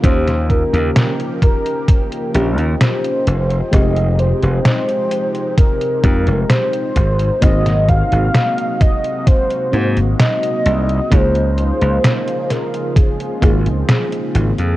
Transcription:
Already playing: C#3 A#3
0.02 D#2 F3 A#3 C#4 D#4 F4 G4 C5, kick, closed hi-hat
0.28 snare, closed hi-hat
0.50 A#4, kick, closed hi-hat
0.74 D#2, closed hi-hat
0.96 snare, closed hi-hat
1.20 closed hi-hat
1.42 A#4, kick, closed hi-hat
1.66 closed hi-hat
1.88 kick, closed hi-hat
2.12 closed hi-hat
2.34 A#1 A#3 C#4 F4 G4, closed hi-hat
2.58 D#2, closed hi-hat
2.81 C5, snare, closed hi-hat
3.04 closed hi-hat
3.27 F1 C3 G#3 G4, closed hi-hat
3.50 closed hi-hat
3.71 F1 G#3 C4 D#4 G4 D#5, kick, closed hi-hat
3.97 closed hi-hat
4.19 C5, closed hi-hat
4.43 F1, closed hi-hat
4.65 C5, snare, closed hi-hat
4.89 closed hi-hat
5.11 closed hi-hat
5.35 closed hi-hat
5.58 A#4, kick, closed hi-hat
5.81 closed hi-hat
6.03 F2 G#3 C4 D#4 G4, kick, closed hi-hat
6.27 F1, closed hi-hat
6.50 C5, snare, closed hi-hat
6.73 closed hi-hat
6.96 G#1 C3 F#3 G#3 F#4, kick, closed hi-hat
7.19 closed hi-hat
7.41 G#1 A#3 C4 D#4 F#4 D#5, kick, closed hi-hat
7.66 snare, closed hi-hat
7.89 F5, kick, closed hi-hat
8.12 G#1, closed hi-hat
8.35 snare, closed hi-hat
8.58 closed hi-hat
8.81 D#5, kick, closed hi-hat
9.04 closed hi-hat
9.27 C5, kick, closed hi-hat
9.50 closed hi-hat
9.72 G#2 A#3 C4 D#4 F#4 C5, closed hi-hat
9.97 G#1, closed hi-hat
10.19 D#5, snare, closed hi-hat
10.43 closed hi-hat
10.66 C2, closed hi-hat
10.89 closed hi-hat
11.10 C#2 C#3 F3 A#3 D#4 F4 G#4 C5, kick, closed hi-hat
11.35 closed hi-hat
11.58 closed hi-hat
11.81 C#2, closed hi-hat
12.04 snare, closed hi-hat
12.28 closed hi-hat
12.50 A#4, snare, closed hi-hat
12.74 closed hi-hat
12.96 C4 G#4, kick, closed hi-hat
13.20 closed hi-hat
13.41 G#1 A#3 D#4 F4 G#4, kick, closed hi-hat
13.66 C#2, closed hi-hat
13.89 snare, closed hi-hat
14.12 closed hi-hat
14.35 G#1, closed hi-hat
14.58 F2, closed hi-hat

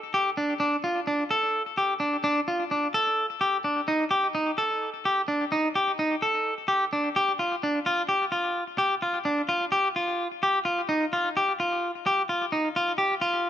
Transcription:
0.14 G4
0.37 D4
0.60 D4
0.84 F4
1.07 D4
1.31 A4
1.78 G4
2.00 D4
2.24 D4
2.48 F4
2.71 D4
2.94 A4
3.41 G4
3.64 D4
3.88 D#4
4.11 G4
4.35 D#4
4.58 A4
5.05 G4
5.28 D4
5.52 D#4
5.75 G4
5.99 D#4
6.22 A4
6.68 G4
6.93 D4
7.16 G4
7.39 F4
7.63 D4
7.86 F4
8.09 G4
8.32 F4
8.78 G4
9.02 F4
9.25 D4
9.49 F4
9.72 G4
9.96 F4
10.43 G4
10.65 F4
10.89 D#4
11.13 F4
11.37 G4
11.60 F4
12.06 G4
12.29 F4
12.52 D#4
12.76 F4
12.98 G4
13.21 F4

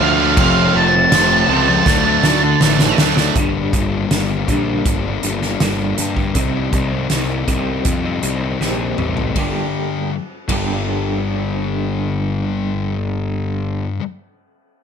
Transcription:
0.00 D2 D3 F3 A3 D4 F5
0.19 F3 A3 D4
0.37 F1 F2 C3 F3 A3 C4 F5, kick, crash
0.75 F1 A5
0.94 F3 A3 C4, muted overdriven electric guitar stroke
1.12 F1 F2 C3 F3 A3 C4, snare, crash
1.49 C#2 C3 F3 A3
1.53 C4
1.67 F3 A3 C4, muted distorted electric guitar stroke
1.86 D2 D3 F#3 A3 D4, kick, snare
2.06 F#3 A3 D4
2.23 D2 D3 F#3 A3, snare
2.27 D4
2.44 muted overdriven electric guitar stroke, muted distorted electric guitar stroke
2.61 A1 D3 F#3 A3 D4, snare
2.79 snare
2.98 D2 D3 F#3 A3, snare
3.03 D4
3.17 A3 D4, snare
3.21 F#3
3.35 G1 G2 D3 G3 A#3, kick, closed hi-hat
3.40 D4
3.73 G1 G2 D3 G3 A#3, kick, closed hi-hat
3.77 D4
3.93 G3 A#3 D4
4.11 G1 G2 D3 G3 A#3, snare, closed hi-hat
4.15 D4
4.30 G3 A#3 D4
4.48 A#1 G2 D3 G3 A#3, kick, closed hi-hat
4.52 D4
4.86 G1 G2 D3, kick, closed hi-hat
5.05 G3 A#3 D4
5.23 G1 G2 D3 G3 A#3 D4, closed hi-hat
5.42 G3 A#3 D4, snare
5.60 G1 G2 D3 G3 A#3 D4, snare, closed hi-hat
5.98 G2 D3 G3 A#3 D4, closed hi-hat
6.17 G3 A#3 D4, kick
6.35 C2 C3 G3 C4 D#4, kick, closed hi-hat
6.72 C2 C3 G3 C4 D#4, kick, closed hi-hat
6.90 G3 C4 D#4
7.09 C2 C3 G3 C4 D#4, snare, closed hi-hat
7.28 G3 C4 D#4
7.47 C2 C3 G3 C4 D#4, kick, closed hi-hat
7.85 F2 C3 G3, kick, closed hi-hat
8.03 G3 C4 D#4
8.22 C2 C3 G3 C4 D#4, closed hi-hat
8.41 G3 C4 D#4
8.60 A#1 C3 G3 C4 D#4, snare
8.97 A1 C3 G3 C4 D#4, mid tom
9.16 G3 C4 D#4, floor tom
9.35 G1 G2 D3 G3 A#3 D4, kick, ride
9.39 G4
10.48 G1 G2 D3 G3 A#3 D4 G4, kick, ride

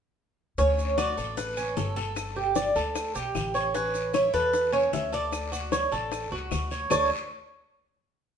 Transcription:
0.58 D2 C#4 C#5, high bongo, long guiro, maracas
0.78 high bongo, maracas
0.97 F#4 D5, high bongo, short guiro, claves, maracas
1.17 A1 A4, high bongo, short guiro, maracas
1.37 B4, high bongo, long guiro, maracas
1.57 C#4, claves, maracas
1.77 G1 A4, high bongo, low bongo, short guiro, maracas
1.96 A4, high bongo, short guiro, maracas
2.16 high bongo, long guiro, claves, maracas
2.36 G4, high bongo
2.55 D5, high bongo, short guiro, maracas
2.76 D2 A4, high bongo, short guiro, maracas
2.95 high bongo, long guiro, claves, maracas
3.15 B1 G4, maracas
3.35 A1, high bongo, low bongo, short guiro, claves, maracas
3.54 C#5, high bongo, short guiro, maracas
3.74 C#4 B4, high bongo, long guiro, maracas
3.94 high bongo, maracas
4.14 E4 C#5, high bongo, short guiro, claves, maracas
4.33 E2 A4 B4, high bongo, short guiro, maracas
4.54 high bongo, long guiro, maracas
4.72 C#4 C#5, claves
4.93 D2 E5, high bongo, low bongo, short guiro, maracas
5.12 A4 D5, high bongo, short guiro, maracas
5.32 high bongo, long guiro, claves, maracas
5.52 F#4, high bongo, maracas
5.72 C#5, high bongo, short guiro, maracas
5.92 A1 A4, high bongo, short guiro, maracas
6.11 high bongo, long guiro, claves, maracas
6.32 C#2 F#4
6.51 D2, high bongo, low bongo, short guiro, claves, maracas
6.71 C#5, high bongo, short guiro, maracas
6.90 D2 D4 A4 C#5, low bongo, long guiro, claves, maracas

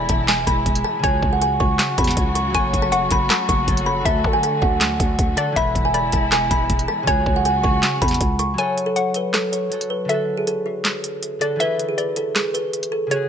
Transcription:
Already playing: B2 E3 G#3 E4 G#4 B4 D5
0.09 E1 A5, kick, closed hi-hat
0.28 G#5, snare, clap, closed hi-hat
0.47 E1 B5, kick, closed hi-hat
0.66 E1, kick, closed hi-hat
0.75 closed hi-hat
0.84 A5
0.99 C#3 C#4
1.04 C#2 C#3 F#3 F#4 C#5 G#5, kick, closed hi-hat
1.08 G#4
1.23 C#2, kick
1.33 F#5
1.42 G#5, closed hi-hat
1.60 C#2 C#6, kick
1.79 snare, clap, closed hi-hat
1.98 E2 B5, kick, closed hi-hat
2.04 snare, closed hi-hat
2.11 closed hi-hat
2.17 C#2, kick, closed hi-hat
2.35 C#6, closed hi-hat
2.50 F#3 F#4
2.55 F#1 A3 A4 G#5 C#6, kick, closed hi-hat
2.59 C#5
2.73 F#1, kick, closed hi-hat
2.82 A5
2.92 F#5 C#6, closed hi-hat
3.11 F#1 B5, kick, closed hi-hat
3.30 A5, snare, clap, closed hi-hat
3.49 F#1 C#6, kick, closed hi-hat
3.66 F#1 F#3 F#4 A4, kick, closed hi-hat
3.70 C#5
3.77 closed hi-hat
3.86 B5
4.01 D3 D4
4.05 D2 D3 F#4 E5 A5, kick, closed hi-hat
4.10 A4
4.24 D3, kick
4.33 G#5
4.43 A5, closed hi-hat
4.62 D2 F#5, kick
4.81 snare, clap, closed hi-hat
5.00 D2, kick, closed hi-hat
5.19 D2, kick, closed hi-hat
5.35 D3 D4 F#4 D5 A5, closed hi-hat
5.40 A4
5.52 E3 E4
5.56 E1 B2 E3 G#3 E4 G#4 E5 B5, kick, closed hi-hat
5.61 B4
5.75 E1, kick, closed hi-hat
5.85 G#5
5.94 D5 B5, closed hi-hat
6.12 E1 A5, kick, closed hi-hat
6.32 G#5, snare, clap, closed hi-hat
6.51 E1 B5, kick, closed hi-hat
6.70 E1, kick, closed hi-hat
6.79 closed hi-hat
6.88 A5
7.03 C#3 C#4
7.07 C#2 C#3 F#3 F#4 C#5 G#5, kick, closed hi-hat
7.12 G#4
7.26 C#2, kick
7.36 F#5
7.45 G#5, closed hi-hat
7.63 C#2 C#6, kick
7.83 snare, clap, closed hi-hat
8.02 E2 B5, kick, closed hi-hat
8.08 snare, closed hi-hat
8.14 closed hi-hat
8.21 C#2, kick, closed hi-hat
8.39 C#6, closed hi-hat
8.54 F#3 F#4
8.58 A4 C#5 G#5, closed hi-hat
8.63 C#5
8.78 closed hi-hat
8.86 A4
8.96 C#5 F#5, closed hi-hat
9.14 B4, closed hi-hat
9.34 A4, snare, clap, closed hi-hat
9.52 C#5, closed hi-hat
9.69 F#3 F#4 A4, closed hi-hat
9.74 C#5
9.81 closed hi-hat
9.90 B4
10.05 D3 D4
10.09 F#4 A4 E5, closed hi-hat
10.14 A4
10.37 G#4
10.47 A4, closed hi-hat
10.66 F#4
10.85 snare, clap, closed hi-hat
11.04 closed hi-hat
11.23 closed hi-hat
11.39 D3 D4 F#4 A4 D5, closed hi-hat
11.44 A4
11.56 E3 E4
11.60 G#4 B4 E5, closed hi-hat
11.65 B4
11.79 closed hi-hat
11.89 G#4
11.98 B4 D5, closed hi-hat
12.16 A4, closed hi-hat
12.36 G#4, snare, clap, closed hi-hat
12.54 B4, closed hi-hat
12.73 closed hi-hat
12.83 closed hi-hat
12.92 A4
13.07 C#3 C#4
13.11 F#4 G#4 C#5, closed hi-hat
13.16 G#4

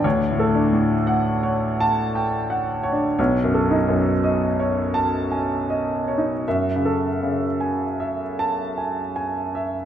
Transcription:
0.04 D2 C#5
0.31 A2
0.39 A4
0.55 D4
0.72 A2
1.07 F#5
1.43 C#5
1.80 A5
2.15 G5
2.50 F#5
2.83 C#5
2.92 D4
3.18 B1 C#5
3.44 F#2
3.54 A4
3.71 D#4
3.88 F#2
4.24 D#5
4.60 C#5
4.94 A5
5.32 G#5
5.70 D#5
6.08 C#5
6.17 D#4
6.48 F#2 E5
6.76 C#3
6.85 A4
7.23 C#3
7.61 G#5
8.00 E5
8.39 A5
8.78 G#5
9.16 G#5
9.55 E5

